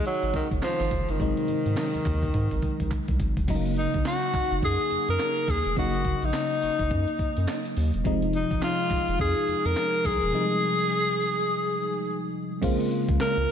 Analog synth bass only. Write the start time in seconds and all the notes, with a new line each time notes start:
0.23 G#1
0.52 F#1
0.80 G#1
0.91 F#1
1.09 G1
1.20 G#1
1.49 G#2
1.66 G#2
1.95 D#2
2.06 D#2
2.34 G#2
2.51 G#1
2.80 A#1
3.09 C2
3.20 G#1
3.37 F1
3.48 F#1
3.94 A#1
4.34 F#1
4.52 F#1
4.63 F#2
4.92 F#2
5.09 F#2
5.48 D#2
5.66 F1
5.77 F#1
6.23 A#1
6.63 F#1
6.80 F#1
6.91 F#2
7.20 F#2
7.38 F#2
7.77 D#2
7.95 E1
8.05 F1
8.51 G#1
8.91 F1
9.09 F1
9.20 F2
9.48 F2
9.66 F2
10.05 C2
10.23 E1
12.63 A#1
13.09 C#2
13.20 C#2
13.38 C#2